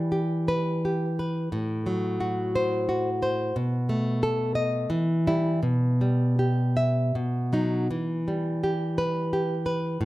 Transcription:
nylon-string guitar
Already playing: E3 G3
0.12 G4
0.48 B4
0.85 G4
1.19 B4
1.52 A2
1.86 F#3
2.20 F#4
2.56 C5
2.89 F#4
3.23 C5
3.56 B2
3.89 A3
4.23 A4
4.55 D#5
4.90 E3
5.27 G3 E4
5.63 B2
6.01 G3
6.39 G4
6.77 E5
7.15 B2
7.53 F#3 D#4
7.91 E3
8.28 G3
8.64 G4
8.98 B4
9.33 G4
9.66 B4
10.01 A2

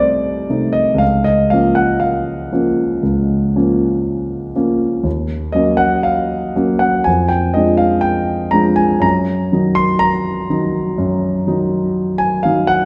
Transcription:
grand piano
Already playing: C2 C3 A3 D#4 C5 D#5
0.00 D5
0.49 C3 A3 D#4
0.73 D#5
0.95 C#2 F5
1.24 D#5
1.50 F3 A#3 C#4 F5
1.75 F#5
2.00 F5
2.52 F3 A#3 C#4
3.03 C#2
3.56 F3 A#3 C#4
4.55 F3 A#3 C#4
5.03 D#2
5.52 F#3 A#3 C#4 D#5
5.77 F#5
6.03 F5
6.56 F#3 A#3 C#4
6.79 F#5
7.04 F2 G#5
7.29 G5
7.54 F3 G#3 D4 D#5
7.77 F5
8.01 G5
8.51 F3 G#3 D4 A#5
8.76 G#5
9.00 F#2 A#5
9.52 D#3 F#3 D#4
9.75 C6
9.99 A#5
10.50 D#3 F#3 D#4
10.98 F#2
11.47 D#3 F#3 D#4
12.18 G#5
12.43 D#3 F#3 D#4 F5
12.67 F#5

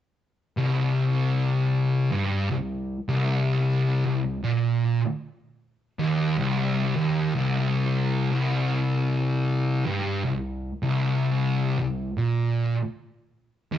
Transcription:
distorted electric guitar
0.57 C2
2.12 G2
2.51 C2
3.09 C2
4.06 C2
4.44 A#2
5.99 D#2
6.38 C2
6.96 D#2
7.35 C2
8.31 C2
9.87 G2
10.25 C2
10.83 C2
11.80 C2
12.18 A#2
13.72 D#2

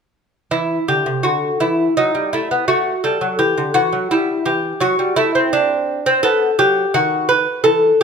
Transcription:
lute
0.51 E3 E4
0.88 D3 G4
1.06 C3
1.23 D3 F#4
1.60 E3 E4
1.97 F#3 D#4
2.15 G3
2.33 A3 E4
2.51 B3
2.68 A3 F#4
3.04 G3 A4
3.21 F#3
3.39 E3 G4
3.58 D3
3.74 E3 F#4
3.93 F#3
4.11 G3 E4
4.46 E3 G4
4.80 F#3 F#4
4.99 G3
5.16 A3 E4
5.35 C4
5.53 D4
6.06 C4
6.23 B3 A4
6.59 F#3 G4
6.94 D#3 F#4
7.29 B4
7.64 E3 A4

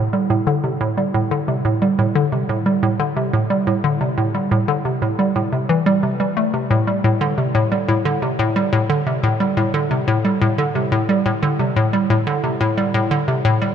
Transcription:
synth arpeggio sound
0.13 G3
0.30 A2
0.47 D3
0.64 C3
0.81 A2
0.98 G3
1.14 A2
1.31 D3
1.48 C3
1.65 A2
1.82 G3
1.99 A2
2.15 D3
2.32 C3
2.49 A2
2.66 G3
2.83 A2
3.00 D3
3.17 C3
3.33 A2
3.50 G3
3.67 A2
3.84 D3
4.01 C3
4.18 A2
4.35 G3
4.51 A2
4.68 D3
4.85 C3
5.02 A2
5.19 G3
5.36 A2
5.53 C3
5.69 E3
5.86 G3
6.03 C3
6.20 G3
6.37 A3
6.54 C3
6.71 A2
6.87 G3
7.04 A2
7.21 D3
7.38 C3
7.55 A2
7.72 G3
7.88 A2
8.05 D3
8.22 C3
8.39 A2
8.56 G3
8.73 A2
8.90 D3
9.07 C3
9.23 A2
9.40 G3
9.57 A2
9.74 D3
9.91 C3
10.08 A2
10.25 G3
10.42 A2
10.58 D3
10.75 C3
10.92 A2
11.09 G3
11.26 A2
11.43 D3
11.59 C3
11.76 A2
11.93 G3
12.10 A2
12.27 D3
12.44 C3
12.61 A2
12.77 G3
12.94 A2
13.11 D3
13.28 C3
13.45 A2
13.62 G3

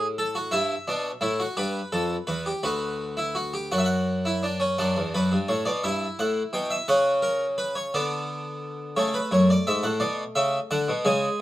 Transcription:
harpsichord
Already playing: A2
0.18 A4
0.35 F#4
0.51 G2 E4 E5
0.88 B2 D4
1.21 A2 E4
1.40 F#4
1.57 G2 G4 B4
1.92 F2 A4
2.27 E2 B4
2.46 G4
2.63 D2 F#4 B4
3.17 E4
3.35 F#4
3.54 G4
3.72 F#2 F#4 F#5
3.78 E5
3.85 F#5
4.25 E4
4.43 D4
4.60 C#4
4.78 F#2 D4 F#5
4.97 E2
5.14 F#2 B4
5.32 G2
5.48 A2 C#5
5.65 B2 D5
5.84 G2 E4 E5
6.19 A2 F#5
6.53 B2 G5
6.70 E5
6.88 C#3 C#4 F#5
7.22 A#4
7.58 B4
7.75 C#5
7.94 D3 B3 D5
8.96 C#3 A3 C#5
9.14 B4
9.31 F#2 C#5
9.50 D5
9.67 G#2 E5
9.83 A2 F#5
10.00 B2 D5
10.35 C#3 E5
10.71 D3 F#5
10.88 B2
11.05 C#3 G#3 G#5

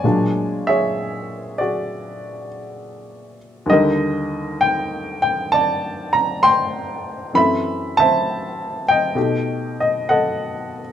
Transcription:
grand piano
Already playing: C#5 D5 G#5
0.04 A#2 F#3 G#3 A#3 D4
0.67 G#4 C#5 E5
1.58 F#4 G#4 D5
3.66 D#2 D#3 G3 D#5
3.71 D3 G4 A#4
4.61 G5
5.22 G5
5.52 D5 A5
6.13 A#5
6.43 G5 C6
7.33 F#2 E3 A3 C4 E5 B5
7.97 C5 E5 A5
8.88 D#5 G5
9.15 B2 A3 D#4 G4
9.80 D#5
10.09 A4 D#5 F#5

